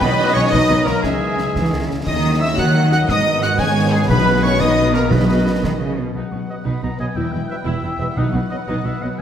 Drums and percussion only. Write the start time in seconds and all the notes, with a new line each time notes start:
0.01 concert bass drum, snare, crash
0.52 concert bass drum, snare
0.87 snare
1.04 concert bass drum, snare
1.38 snare
1.56 concert bass drum, snare
2.07 concert bass drum, snare, crash
2.58 concert bass drum, snare
2.92 snare
3.09 concert bass drum, snare
3.42 snare
3.58 concert bass drum, snare
4.09 concert bass drum, snare, crash
4.61 concert bass drum, snare
4.94 snare
5.11 concert bass drum, snare
5.64 concert bass drum, snare